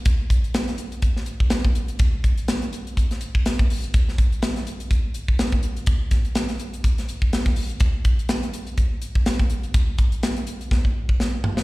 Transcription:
0.05 kick loud
0.05 closed hi-hat medium
0.30 kick medium
0.30 closed hi-hat medium
0.44 closed hi-hat soft
0.54 snare loud
0.54 closed hi-hat medium
0.68 snare soft
0.68 closed hi-hat soft
0.78 closed hi-hat medium
0.92 closed hi-hat soft
1.02 kick medium
1.02 closed hi-hat medium
1.17 snare soft
1.26 closed hi-hat medium
1.40 kick medium
1.50 snare loud
1.50 closed hi-hat medium
1.64 kick medium
1.64 closed hi-hat soft
1.75 closed hi-hat medium
1.88 closed hi-hat soft
1.99 kick loud
1.99 closed hi-hat medium
2.24 kick medium
2.24 closed hi-hat medium
2.37 closed hi-hat soft
2.48 snare loud
2.48 closed hi-hat medium
2.62 closed hi-hat soft
2.73 closed hi-hat medium
2.87 closed hi-hat soft
2.97 kick medium
2.97 closed hi-hat medium
3.11 snare soft
3.11 closed hi-hat soft
3.21 closed hi-hat medium
3.35 kick medium
3.46 snare loud
3.46 closed hi-hat medium
3.59 kick medium
3.59 closed hi-hat soft
3.70 open hi-hat medium
3.84 closed hi-hat soft
3.94 kick loud
3.94 closed hi-hat medium
4.09 snare soft
4.18 kick medium
4.18 closed hi-hat medium
4.32 closed hi-hat soft
4.42 snare loud
4.42 closed hi-hat medium
4.56 snare soft
4.56 closed hi-hat soft
4.67 closed hi-hat medium
4.80 closed hi-hat soft
4.91 kick medium
4.91 closed hi-hat medium
5.14 closed hi-hat medium
5.28 kick medium
5.39 snare loud
5.39 closed hi-hat medium
5.52 kick medium
5.52 closed hi-hat soft
5.63 closed hi-hat medium
5.77 closed hi-hat soft
5.86 kick loud
5.86 closed hi-hat medium
6.11 kick medium
6.11 snare soft
6.11 closed hi-hat medium
6.25 closed hi-hat soft
6.35 snare loud
6.35 closed hi-hat medium
6.48 snare soft
6.48 closed hi-hat soft
6.59 closed hi-hat medium
6.73 closed hi-hat soft
6.84 kick medium
6.84 closed hi-hat medium
6.98 snare soft
6.98 closed hi-hat soft
7.09 closed hi-hat medium
7.22 kick medium
7.33 snare loud
7.33 closed hi-hat medium
7.46 kick medium
7.46 snare soft
7.46 closed hi-hat soft
7.56 open hi-hat medium
7.70 closed hi-hat soft
7.80 kick loud
7.80 closed hi-hat medium
8.05 kick medium
8.05 closed hi-hat medium
8.19 closed hi-hat soft
8.29 snare loud
8.29 closed hi-hat medium
8.43 closed hi-hat soft
8.54 closed hi-hat medium
8.67 closed hi-hat soft
8.78 kick medium
8.78 closed hi-hat medium
9.02 closed hi-hat medium
9.15 kick medium
9.26 snare loud
9.26 closed hi-hat medium
9.39 kick medium
9.39 closed hi-hat soft
9.50 closed hi-hat medium
9.63 closed hi-hat soft
9.74 kick loud
9.74 closed hi-hat medium
9.98 kick medium
9.98 closed hi-hat medium
10.12 closed hi-hat soft
10.23 snare loud
10.23 closed hi-hat medium
10.36 closed hi-hat soft
10.47 closed hi-hat medium
10.61 closed hi-hat soft
10.71 kick medium
10.71 snare medium
10.85 kick medium
11.09 kick medium
11.20 snare medium
11.44 floor tom medium
11.57 snare medium

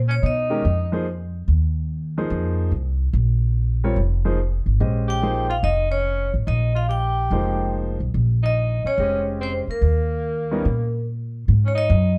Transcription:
0.00 0.20 A#2 medium
0.08 0.14 C#4 medium
0.08 0.17 C#5 medium
0.23 0.61 B2 medium
0.23 1.02 D#4 medium
0.23 1.04 D#5 medium
0.50 0.63 D#3 medium
0.50 0.63 G#3 medium
0.50 0.63 C#4 medium
0.50 0.63 G4 medium
0.50 0.63 A#4 medium
0.65 1.44 F2 medium
0.92 1.05 F3 medium
0.92 1.05 A#3 medium
0.92 1.05 D#4 medium
0.92 1.05 G#4 medium
0.92 1.05 C5 medium
1.48 2.27 D#2 medium
2.18 2.70 F3 medium
2.18 2.70 A#3 medium
2.18 2.70 D#4 medium
2.18 2.70 G#4 medium
2.18 2.70 C5 medium
2.30 2.69 F2 medium
2.72 3.11 C2 medium
3.13 3.93 A#1 medium
3.84 3.96 G3 medium
3.84 3.96 C4 medium
3.84 3.96 F4 medium
3.84 3.96 A#4 medium
3.84 3.97 C#5 medium
3.96 4.62 F1 medium
4.25 4.38 F3 medium
4.25 4.38 A#3 medium
4.25 4.38 D#4 medium
4.25 4.38 G#4 medium
4.25 4.38 C5 medium
4.66 4.79 G#1 medium
4.80 5.60 A#1 medium
4.80 5.21 G#3 soft
4.80 5.21 C#4 soft
4.80 5.21 G4 soft
4.80 5.21 C5 soft
4.80 5.21 D#5 soft
5.08 5.47 G4 medium
5.08 5.52 G5 medium
5.22 5.48 F3 medium
5.22 5.47 A#3 medium
5.22 5.48 D#4 soft
5.22 5.48 G#4 medium
5.22 5.48 C5 medium
5.49 5.56 F4 medium
5.49 5.57 F5 medium
5.63 6.29 F1 medium
5.63 5.90 D#4 medium
5.63 5.93 D#5 medium
5.90 6.30 C#4 medium
5.90 6.31 C#5 medium
6.34 6.46 A1 medium
6.47 7.27 A#1 medium
6.47 6.73 D#4 medium
6.47 6.76 D#5 medium
6.75 6.88 F4 medium
6.75 6.90 F5 medium
6.89 7.68 G4 medium
6.89 7.69 G5 medium
7.30 7.96 F1 medium
7.30 7.95 F3 medium
7.30 7.96 G#3 soft
7.30 7.95 A#3 medium
7.30 7.96 D#4 medium
7.30 7.96 C5 medium
8.00 8.13 B1 medium
8.14 8.80 A#1 medium
8.43 8.81 D#4 medium
8.43 8.87 D#5 loud
8.84 9.24 C#4 medium
8.84 9.24 C#5 medium
8.84 muted upright bass stroke soft
8.98 9.63 F1 medium
8.98 9.62 G#3 medium
8.98 9.62 C#4 soft
8.98 9.63 G4 medium
8.98 9.63 C5 soft
8.98 9.63 D#5 medium
9.41 9.53 C4 medium
9.41 9.55 C5 medium
9.67 11.03 A#3 medium
9.67 11.04 A#4 medium
9.67 muted upright bass stroke soft
9.81 10.61 D#2 medium
10.51 10.63 G3 medium
10.51 10.64 B3 medium
10.51 10.64 C#4 medium
10.51 10.64 D#4 medium
10.51 10.64 A#4 medium
10.65 11.44 A#2 medium
11.48 11.88 G#2 medium
11.65 11.74 C#4 medium
11.65 11.76 C#5 medium
11.75 12.14 D#4 medium
11.75 12.15 D#5 medium
11.90 12.18 F#2 medium

